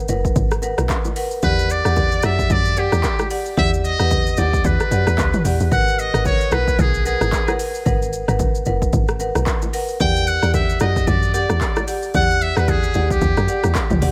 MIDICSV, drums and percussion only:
0, 0, Header, 1, 2, 480
1, 0, Start_track
1, 0, Tempo, 535714
1, 1282, Time_signature, 4, 2, 24, 8
1, 12649, End_track
2, 0, Start_track
2, 0, Title_t, "Drums"
2, 75, Note_on_c, 9, 82, 101
2, 84, Note_on_c, 9, 61, 74
2, 165, Note_off_c, 9, 82, 0
2, 173, Note_off_c, 9, 61, 0
2, 221, Note_on_c, 9, 36, 96
2, 227, Note_on_c, 9, 82, 62
2, 311, Note_off_c, 9, 36, 0
2, 316, Note_off_c, 9, 82, 0
2, 320, Note_on_c, 9, 61, 58
2, 320, Note_on_c, 9, 64, 81
2, 321, Note_on_c, 9, 82, 77
2, 322, Note_on_c, 9, 36, 127
2, 410, Note_off_c, 9, 61, 0
2, 410, Note_off_c, 9, 64, 0
2, 411, Note_off_c, 9, 36, 0
2, 411, Note_off_c, 9, 82, 0
2, 458, Note_on_c, 9, 82, 47
2, 462, Note_on_c, 9, 37, 97
2, 548, Note_off_c, 9, 82, 0
2, 552, Note_off_c, 9, 37, 0
2, 555, Note_on_c, 9, 60, 51
2, 561, Note_on_c, 9, 82, 95
2, 645, Note_off_c, 9, 60, 0
2, 650, Note_off_c, 9, 82, 0
2, 699, Note_on_c, 9, 37, 100
2, 700, Note_on_c, 9, 82, 70
2, 702, Note_on_c, 9, 61, 71
2, 789, Note_off_c, 9, 37, 0
2, 790, Note_off_c, 9, 82, 0
2, 791, Note_off_c, 9, 61, 0
2, 797, Note_on_c, 9, 60, 82
2, 801, Note_on_c, 9, 36, 91
2, 802, Note_on_c, 9, 39, 90
2, 806, Note_on_c, 9, 82, 75
2, 887, Note_off_c, 9, 60, 0
2, 890, Note_off_c, 9, 36, 0
2, 891, Note_off_c, 9, 39, 0
2, 896, Note_off_c, 9, 82, 0
2, 938, Note_on_c, 9, 82, 52
2, 941, Note_on_c, 9, 61, 84
2, 1028, Note_off_c, 9, 82, 0
2, 1031, Note_off_c, 9, 61, 0
2, 1040, Note_on_c, 9, 46, 85
2, 1040, Note_on_c, 9, 82, 102
2, 1130, Note_off_c, 9, 46, 0
2, 1130, Note_off_c, 9, 82, 0
2, 1174, Note_on_c, 9, 82, 54
2, 1263, Note_off_c, 9, 82, 0
2, 1277, Note_on_c, 9, 64, 76
2, 1277, Note_on_c, 9, 82, 83
2, 1281, Note_on_c, 9, 36, 116
2, 1367, Note_off_c, 9, 64, 0
2, 1367, Note_off_c, 9, 82, 0
2, 1370, Note_off_c, 9, 36, 0
2, 1425, Note_on_c, 9, 82, 55
2, 1515, Note_off_c, 9, 82, 0
2, 1522, Note_on_c, 9, 82, 92
2, 1611, Note_off_c, 9, 82, 0
2, 1658, Note_on_c, 9, 37, 88
2, 1662, Note_on_c, 9, 82, 59
2, 1748, Note_off_c, 9, 37, 0
2, 1751, Note_off_c, 9, 82, 0
2, 1757, Note_on_c, 9, 60, 66
2, 1757, Note_on_c, 9, 64, 63
2, 1760, Note_on_c, 9, 82, 86
2, 1762, Note_on_c, 9, 36, 102
2, 1846, Note_off_c, 9, 60, 0
2, 1846, Note_off_c, 9, 64, 0
2, 1850, Note_off_c, 9, 82, 0
2, 1852, Note_off_c, 9, 36, 0
2, 1898, Note_on_c, 9, 82, 57
2, 1988, Note_off_c, 9, 82, 0
2, 1994, Note_on_c, 9, 82, 102
2, 2002, Note_on_c, 9, 37, 105
2, 2005, Note_on_c, 9, 61, 73
2, 2083, Note_off_c, 9, 82, 0
2, 2091, Note_off_c, 9, 37, 0
2, 2094, Note_off_c, 9, 61, 0
2, 2141, Note_on_c, 9, 36, 98
2, 2144, Note_on_c, 9, 82, 62
2, 2230, Note_off_c, 9, 36, 0
2, 2234, Note_off_c, 9, 82, 0
2, 2240, Note_on_c, 9, 82, 78
2, 2241, Note_on_c, 9, 36, 122
2, 2244, Note_on_c, 9, 61, 60
2, 2244, Note_on_c, 9, 64, 83
2, 2329, Note_off_c, 9, 82, 0
2, 2331, Note_off_c, 9, 36, 0
2, 2333, Note_off_c, 9, 61, 0
2, 2333, Note_off_c, 9, 64, 0
2, 2378, Note_on_c, 9, 82, 49
2, 2467, Note_off_c, 9, 82, 0
2, 2479, Note_on_c, 9, 82, 93
2, 2480, Note_on_c, 9, 60, 48
2, 2568, Note_off_c, 9, 82, 0
2, 2569, Note_off_c, 9, 60, 0
2, 2619, Note_on_c, 9, 37, 103
2, 2620, Note_on_c, 9, 82, 68
2, 2626, Note_on_c, 9, 61, 72
2, 2708, Note_off_c, 9, 37, 0
2, 2710, Note_off_c, 9, 82, 0
2, 2716, Note_off_c, 9, 61, 0
2, 2720, Note_on_c, 9, 39, 90
2, 2720, Note_on_c, 9, 60, 83
2, 2721, Note_on_c, 9, 36, 89
2, 2724, Note_on_c, 9, 82, 80
2, 2809, Note_off_c, 9, 39, 0
2, 2810, Note_off_c, 9, 36, 0
2, 2810, Note_off_c, 9, 60, 0
2, 2814, Note_off_c, 9, 82, 0
2, 2858, Note_on_c, 9, 82, 55
2, 2862, Note_on_c, 9, 37, 100
2, 2864, Note_on_c, 9, 61, 82
2, 2948, Note_off_c, 9, 82, 0
2, 2952, Note_off_c, 9, 37, 0
2, 2953, Note_off_c, 9, 61, 0
2, 2962, Note_on_c, 9, 46, 84
2, 2962, Note_on_c, 9, 82, 101
2, 3051, Note_off_c, 9, 46, 0
2, 3051, Note_off_c, 9, 82, 0
2, 3098, Note_on_c, 9, 82, 54
2, 3188, Note_off_c, 9, 82, 0
2, 3201, Note_on_c, 9, 64, 77
2, 3202, Note_on_c, 9, 82, 85
2, 3203, Note_on_c, 9, 36, 114
2, 3291, Note_off_c, 9, 64, 0
2, 3292, Note_off_c, 9, 82, 0
2, 3293, Note_off_c, 9, 36, 0
2, 3349, Note_on_c, 9, 82, 58
2, 3438, Note_off_c, 9, 82, 0
2, 3446, Note_on_c, 9, 82, 92
2, 3535, Note_off_c, 9, 82, 0
2, 3580, Note_on_c, 9, 37, 82
2, 3583, Note_on_c, 9, 82, 59
2, 3669, Note_off_c, 9, 37, 0
2, 3672, Note_off_c, 9, 82, 0
2, 3679, Note_on_c, 9, 60, 62
2, 3679, Note_on_c, 9, 64, 62
2, 3684, Note_on_c, 9, 36, 104
2, 3684, Note_on_c, 9, 82, 86
2, 3768, Note_off_c, 9, 60, 0
2, 3768, Note_off_c, 9, 64, 0
2, 3773, Note_off_c, 9, 36, 0
2, 3773, Note_off_c, 9, 82, 0
2, 3822, Note_on_c, 9, 82, 55
2, 3912, Note_off_c, 9, 82, 0
2, 3916, Note_on_c, 9, 82, 99
2, 3927, Note_on_c, 9, 61, 72
2, 4006, Note_off_c, 9, 82, 0
2, 4017, Note_off_c, 9, 61, 0
2, 4062, Note_on_c, 9, 36, 98
2, 4067, Note_on_c, 9, 82, 66
2, 4152, Note_off_c, 9, 36, 0
2, 4157, Note_off_c, 9, 82, 0
2, 4161, Note_on_c, 9, 82, 77
2, 4162, Note_on_c, 9, 36, 127
2, 4164, Note_on_c, 9, 61, 58
2, 4164, Note_on_c, 9, 64, 81
2, 4251, Note_off_c, 9, 82, 0
2, 4252, Note_off_c, 9, 36, 0
2, 4254, Note_off_c, 9, 61, 0
2, 4254, Note_off_c, 9, 64, 0
2, 4301, Note_on_c, 9, 82, 48
2, 4305, Note_on_c, 9, 37, 91
2, 4391, Note_off_c, 9, 82, 0
2, 4394, Note_off_c, 9, 37, 0
2, 4399, Note_on_c, 9, 60, 50
2, 4405, Note_on_c, 9, 82, 93
2, 4489, Note_off_c, 9, 60, 0
2, 4495, Note_off_c, 9, 82, 0
2, 4542, Note_on_c, 9, 37, 100
2, 4543, Note_on_c, 9, 82, 67
2, 4545, Note_on_c, 9, 61, 70
2, 4632, Note_off_c, 9, 37, 0
2, 4633, Note_off_c, 9, 82, 0
2, 4635, Note_off_c, 9, 61, 0
2, 4641, Note_on_c, 9, 60, 80
2, 4642, Note_on_c, 9, 36, 89
2, 4644, Note_on_c, 9, 39, 90
2, 4649, Note_on_c, 9, 82, 78
2, 4730, Note_off_c, 9, 60, 0
2, 4732, Note_off_c, 9, 36, 0
2, 4733, Note_off_c, 9, 39, 0
2, 4738, Note_off_c, 9, 82, 0
2, 4781, Note_on_c, 9, 82, 51
2, 4783, Note_on_c, 9, 45, 91
2, 4783, Note_on_c, 9, 61, 81
2, 4871, Note_off_c, 9, 82, 0
2, 4872, Note_off_c, 9, 45, 0
2, 4873, Note_off_c, 9, 61, 0
2, 4884, Note_on_c, 9, 46, 83
2, 4884, Note_on_c, 9, 82, 105
2, 4973, Note_off_c, 9, 46, 0
2, 4973, Note_off_c, 9, 82, 0
2, 5019, Note_on_c, 9, 82, 54
2, 5109, Note_off_c, 9, 82, 0
2, 5119, Note_on_c, 9, 64, 76
2, 5123, Note_on_c, 9, 36, 112
2, 5124, Note_on_c, 9, 82, 86
2, 5209, Note_off_c, 9, 64, 0
2, 5213, Note_off_c, 9, 36, 0
2, 5213, Note_off_c, 9, 82, 0
2, 5270, Note_on_c, 9, 82, 56
2, 5360, Note_off_c, 9, 82, 0
2, 5366, Note_on_c, 9, 82, 90
2, 5456, Note_off_c, 9, 82, 0
2, 5503, Note_on_c, 9, 37, 85
2, 5506, Note_on_c, 9, 82, 59
2, 5592, Note_off_c, 9, 37, 0
2, 5595, Note_off_c, 9, 82, 0
2, 5598, Note_on_c, 9, 60, 61
2, 5598, Note_on_c, 9, 64, 64
2, 5604, Note_on_c, 9, 36, 103
2, 5605, Note_on_c, 9, 82, 84
2, 5687, Note_off_c, 9, 60, 0
2, 5687, Note_off_c, 9, 64, 0
2, 5694, Note_off_c, 9, 36, 0
2, 5694, Note_off_c, 9, 82, 0
2, 5743, Note_on_c, 9, 82, 55
2, 5832, Note_off_c, 9, 82, 0
2, 5836, Note_on_c, 9, 82, 98
2, 5844, Note_on_c, 9, 37, 106
2, 5847, Note_on_c, 9, 61, 75
2, 5926, Note_off_c, 9, 82, 0
2, 5934, Note_off_c, 9, 37, 0
2, 5937, Note_off_c, 9, 61, 0
2, 5982, Note_on_c, 9, 36, 92
2, 5987, Note_on_c, 9, 82, 65
2, 6071, Note_off_c, 9, 36, 0
2, 6077, Note_off_c, 9, 82, 0
2, 6082, Note_on_c, 9, 36, 125
2, 6082, Note_on_c, 9, 82, 79
2, 6084, Note_on_c, 9, 61, 60
2, 6084, Note_on_c, 9, 64, 81
2, 6172, Note_off_c, 9, 36, 0
2, 6172, Note_off_c, 9, 82, 0
2, 6174, Note_off_c, 9, 61, 0
2, 6174, Note_off_c, 9, 64, 0
2, 6221, Note_on_c, 9, 82, 48
2, 6311, Note_off_c, 9, 82, 0
2, 6319, Note_on_c, 9, 60, 50
2, 6323, Note_on_c, 9, 82, 94
2, 6408, Note_off_c, 9, 60, 0
2, 6413, Note_off_c, 9, 82, 0
2, 6462, Note_on_c, 9, 37, 99
2, 6464, Note_on_c, 9, 82, 64
2, 6465, Note_on_c, 9, 61, 72
2, 6552, Note_off_c, 9, 37, 0
2, 6553, Note_off_c, 9, 82, 0
2, 6555, Note_off_c, 9, 61, 0
2, 6559, Note_on_c, 9, 60, 81
2, 6563, Note_on_c, 9, 36, 90
2, 6564, Note_on_c, 9, 39, 88
2, 6569, Note_on_c, 9, 82, 76
2, 6649, Note_off_c, 9, 60, 0
2, 6652, Note_off_c, 9, 36, 0
2, 6654, Note_off_c, 9, 39, 0
2, 6659, Note_off_c, 9, 82, 0
2, 6701, Note_on_c, 9, 82, 55
2, 6704, Note_on_c, 9, 61, 82
2, 6705, Note_on_c, 9, 37, 101
2, 6791, Note_off_c, 9, 82, 0
2, 6794, Note_off_c, 9, 61, 0
2, 6795, Note_off_c, 9, 37, 0
2, 6805, Note_on_c, 9, 46, 83
2, 6805, Note_on_c, 9, 82, 105
2, 6895, Note_off_c, 9, 46, 0
2, 6895, Note_off_c, 9, 82, 0
2, 6940, Note_on_c, 9, 82, 55
2, 7030, Note_off_c, 9, 82, 0
2, 7040, Note_on_c, 9, 64, 76
2, 7043, Note_on_c, 9, 36, 108
2, 7044, Note_on_c, 9, 82, 79
2, 7130, Note_off_c, 9, 64, 0
2, 7133, Note_off_c, 9, 36, 0
2, 7133, Note_off_c, 9, 82, 0
2, 7189, Note_on_c, 9, 82, 54
2, 7278, Note_off_c, 9, 82, 0
2, 7284, Note_on_c, 9, 82, 90
2, 7374, Note_off_c, 9, 82, 0
2, 7421, Note_on_c, 9, 37, 85
2, 7424, Note_on_c, 9, 82, 60
2, 7510, Note_off_c, 9, 37, 0
2, 7514, Note_off_c, 9, 82, 0
2, 7518, Note_on_c, 9, 60, 61
2, 7518, Note_on_c, 9, 64, 64
2, 7523, Note_on_c, 9, 36, 103
2, 7523, Note_on_c, 9, 82, 87
2, 7607, Note_off_c, 9, 60, 0
2, 7607, Note_off_c, 9, 64, 0
2, 7613, Note_off_c, 9, 36, 0
2, 7613, Note_off_c, 9, 82, 0
2, 7660, Note_on_c, 9, 82, 53
2, 7750, Note_off_c, 9, 82, 0
2, 7755, Note_on_c, 9, 82, 97
2, 7766, Note_on_c, 9, 61, 71
2, 7844, Note_off_c, 9, 82, 0
2, 7856, Note_off_c, 9, 61, 0
2, 7901, Note_on_c, 9, 36, 95
2, 7905, Note_on_c, 9, 82, 63
2, 7991, Note_off_c, 9, 36, 0
2, 7995, Note_off_c, 9, 82, 0
2, 8000, Note_on_c, 9, 82, 79
2, 8002, Note_on_c, 9, 36, 127
2, 8005, Note_on_c, 9, 61, 58
2, 8005, Note_on_c, 9, 64, 82
2, 8090, Note_off_c, 9, 82, 0
2, 8091, Note_off_c, 9, 36, 0
2, 8094, Note_off_c, 9, 61, 0
2, 8094, Note_off_c, 9, 64, 0
2, 8138, Note_on_c, 9, 82, 49
2, 8142, Note_on_c, 9, 37, 96
2, 8228, Note_off_c, 9, 82, 0
2, 8231, Note_off_c, 9, 37, 0
2, 8239, Note_on_c, 9, 60, 50
2, 8242, Note_on_c, 9, 82, 95
2, 8329, Note_off_c, 9, 60, 0
2, 8331, Note_off_c, 9, 82, 0
2, 8381, Note_on_c, 9, 37, 100
2, 8382, Note_on_c, 9, 82, 67
2, 8383, Note_on_c, 9, 61, 71
2, 8470, Note_off_c, 9, 37, 0
2, 8472, Note_off_c, 9, 82, 0
2, 8473, Note_off_c, 9, 61, 0
2, 8479, Note_on_c, 9, 60, 81
2, 8481, Note_on_c, 9, 39, 88
2, 8482, Note_on_c, 9, 36, 88
2, 8486, Note_on_c, 9, 82, 76
2, 8569, Note_off_c, 9, 60, 0
2, 8571, Note_off_c, 9, 36, 0
2, 8571, Note_off_c, 9, 39, 0
2, 8576, Note_off_c, 9, 82, 0
2, 8619, Note_on_c, 9, 82, 54
2, 8624, Note_on_c, 9, 61, 78
2, 8709, Note_off_c, 9, 82, 0
2, 8713, Note_off_c, 9, 61, 0
2, 8722, Note_on_c, 9, 46, 84
2, 8722, Note_on_c, 9, 82, 105
2, 8812, Note_off_c, 9, 46, 0
2, 8812, Note_off_c, 9, 82, 0
2, 8857, Note_on_c, 9, 82, 53
2, 8947, Note_off_c, 9, 82, 0
2, 8960, Note_on_c, 9, 64, 72
2, 8962, Note_on_c, 9, 82, 83
2, 8963, Note_on_c, 9, 36, 107
2, 9050, Note_off_c, 9, 64, 0
2, 9052, Note_off_c, 9, 82, 0
2, 9053, Note_off_c, 9, 36, 0
2, 9108, Note_on_c, 9, 82, 56
2, 9198, Note_off_c, 9, 82, 0
2, 9203, Note_on_c, 9, 82, 92
2, 9293, Note_off_c, 9, 82, 0
2, 9341, Note_on_c, 9, 37, 86
2, 9344, Note_on_c, 9, 82, 59
2, 9431, Note_off_c, 9, 37, 0
2, 9434, Note_off_c, 9, 82, 0
2, 9440, Note_on_c, 9, 60, 64
2, 9440, Note_on_c, 9, 64, 64
2, 9443, Note_on_c, 9, 82, 91
2, 9444, Note_on_c, 9, 36, 104
2, 9530, Note_off_c, 9, 60, 0
2, 9530, Note_off_c, 9, 64, 0
2, 9532, Note_off_c, 9, 82, 0
2, 9533, Note_off_c, 9, 36, 0
2, 9582, Note_on_c, 9, 82, 56
2, 9671, Note_off_c, 9, 82, 0
2, 9675, Note_on_c, 9, 82, 99
2, 9683, Note_on_c, 9, 37, 105
2, 9688, Note_on_c, 9, 61, 72
2, 9765, Note_off_c, 9, 82, 0
2, 9773, Note_off_c, 9, 37, 0
2, 9777, Note_off_c, 9, 61, 0
2, 9822, Note_on_c, 9, 36, 98
2, 9826, Note_on_c, 9, 82, 62
2, 9912, Note_off_c, 9, 36, 0
2, 9916, Note_off_c, 9, 82, 0
2, 9922, Note_on_c, 9, 36, 127
2, 9922, Note_on_c, 9, 82, 77
2, 9925, Note_on_c, 9, 61, 57
2, 9925, Note_on_c, 9, 64, 86
2, 10011, Note_off_c, 9, 82, 0
2, 10012, Note_off_c, 9, 36, 0
2, 10015, Note_off_c, 9, 61, 0
2, 10015, Note_off_c, 9, 64, 0
2, 10060, Note_on_c, 9, 82, 48
2, 10150, Note_off_c, 9, 82, 0
2, 10162, Note_on_c, 9, 60, 51
2, 10162, Note_on_c, 9, 82, 92
2, 10251, Note_off_c, 9, 60, 0
2, 10251, Note_off_c, 9, 82, 0
2, 10301, Note_on_c, 9, 37, 97
2, 10302, Note_on_c, 9, 82, 67
2, 10307, Note_on_c, 9, 61, 70
2, 10390, Note_off_c, 9, 37, 0
2, 10392, Note_off_c, 9, 82, 0
2, 10396, Note_off_c, 9, 61, 0
2, 10401, Note_on_c, 9, 60, 79
2, 10402, Note_on_c, 9, 36, 91
2, 10403, Note_on_c, 9, 39, 92
2, 10408, Note_on_c, 9, 82, 76
2, 10491, Note_off_c, 9, 60, 0
2, 10492, Note_off_c, 9, 36, 0
2, 10493, Note_off_c, 9, 39, 0
2, 10497, Note_off_c, 9, 82, 0
2, 10539, Note_on_c, 9, 82, 51
2, 10543, Note_on_c, 9, 37, 103
2, 10545, Note_on_c, 9, 61, 80
2, 10629, Note_off_c, 9, 82, 0
2, 10633, Note_off_c, 9, 37, 0
2, 10635, Note_off_c, 9, 61, 0
2, 10642, Note_on_c, 9, 46, 82
2, 10642, Note_on_c, 9, 82, 105
2, 10732, Note_off_c, 9, 46, 0
2, 10732, Note_off_c, 9, 82, 0
2, 10776, Note_on_c, 9, 82, 52
2, 10866, Note_off_c, 9, 82, 0
2, 10879, Note_on_c, 9, 64, 74
2, 10880, Note_on_c, 9, 82, 86
2, 10882, Note_on_c, 9, 36, 110
2, 10969, Note_off_c, 9, 64, 0
2, 10969, Note_off_c, 9, 82, 0
2, 10972, Note_off_c, 9, 36, 0
2, 11026, Note_on_c, 9, 82, 55
2, 11116, Note_off_c, 9, 82, 0
2, 11123, Note_on_c, 9, 82, 86
2, 11212, Note_off_c, 9, 82, 0
2, 11259, Note_on_c, 9, 37, 89
2, 11262, Note_on_c, 9, 82, 58
2, 11349, Note_off_c, 9, 37, 0
2, 11352, Note_off_c, 9, 82, 0
2, 11360, Note_on_c, 9, 60, 62
2, 11360, Note_on_c, 9, 64, 63
2, 11362, Note_on_c, 9, 82, 90
2, 11363, Note_on_c, 9, 36, 103
2, 11450, Note_off_c, 9, 60, 0
2, 11450, Note_off_c, 9, 64, 0
2, 11451, Note_off_c, 9, 82, 0
2, 11453, Note_off_c, 9, 36, 0
2, 11500, Note_on_c, 9, 82, 52
2, 11590, Note_off_c, 9, 82, 0
2, 11594, Note_on_c, 9, 82, 96
2, 11607, Note_on_c, 9, 61, 74
2, 11684, Note_off_c, 9, 82, 0
2, 11697, Note_off_c, 9, 61, 0
2, 11741, Note_on_c, 9, 36, 95
2, 11746, Note_on_c, 9, 82, 62
2, 11831, Note_off_c, 9, 36, 0
2, 11836, Note_off_c, 9, 82, 0
2, 11840, Note_on_c, 9, 82, 79
2, 11842, Note_on_c, 9, 36, 126
2, 11844, Note_on_c, 9, 61, 58
2, 11844, Note_on_c, 9, 64, 80
2, 11930, Note_off_c, 9, 82, 0
2, 11931, Note_off_c, 9, 36, 0
2, 11934, Note_off_c, 9, 61, 0
2, 11934, Note_off_c, 9, 64, 0
2, 11979, Note_on_c, 9, 82, 49
2, 11983, Note_on_c, 9, 37, 100
2, 12069, Note_off_c, 9, 82, 0
2, 12072, Note_off_c, 9, 37, 0
2, 12078, Note_on_c, 9, 60, 52
2, 12080, Note_on_c, 9, 82, 90
2, 12167, Note_off_c, 9, 60, 0
2, 12170, Note_off_c, 9, 82, 0
2, 12218, Note_on_c, 9, 37, 100
2, 12219, Note_on_c, 9, 82, 69
2, 12223, Note_on_c, 9, 61, 68
2, 12307, Note_off_c, 9, 37, 0
2, 12309, Note_off_c, 9, 82, 0
2, 12313, Note_off_c, 9, 61, 0
2, 12320, Note_on_c, 9, 39, 96
2, 12320, Note_on_c, 9, 60, 81
2, 12321, Note_on_c, 9, 36, 93
2, 12324, Note_on_c, 9, 82, 78
2, 12409, Note_off_c, 9, 39, 0
2, 12409, Note_off_c, 9, 60, 0
2, 12411, Note_off_c, 9, 36, 0
2, 12414, Note_off_c, 9, 82, 0
2, 12457, Note_on_c, 9, 82, 54
2, 12459, Note_on_c, 9, 45, 95
2, 12461, Note_on_c, 9, 61, 79
2, 12547, Note_off_c, 9, 82, 0
2, 12548, Note_off_c, 9, 45, 0
2, 12551, Note_off_c, 9, 61, 0
2, 12561, Note_on_c, 9, 46, 85
2, 12561, Note_on_c, 9, 82, 102
2, 12649, Note_off_c, 9, 46, 0
2, 12649, Note_off_c, 9, 82, 0
2, 12649, End_track
0, 0, End_of_file